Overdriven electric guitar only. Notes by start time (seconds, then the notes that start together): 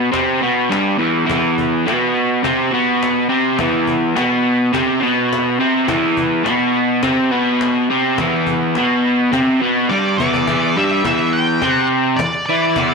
Already playing: B2 B3
0.12 C3 C4
0.41 B2 B3
0.69 G2 G3
0.98 E2 E3
1.25 E2 E3
1.86 B2 B3
2.43 C3 C4
2.72 B2 B3
3.29 C3 C4
3.58 E2 E3
4.16 B2 B3
4.73 C3 C4
5.01 B2 B3
5.60 C3 C4
5.87 E2 E3
6.43 B2 B3
7.03 C3 C4
7.32 B2 B3
7.90 C3 C4
8.19 E2 E3
8.75 B2 B3
9.32 C3 C4
9.61 B2 B3
9.90 G2 G3
10.19 E2 E3
10.48 E2 E3
10.77 G2 G3
11.04 E2 E3
11.61 C3 C4
12.19 E2
12.49 E3 E4
12.77 E2 E3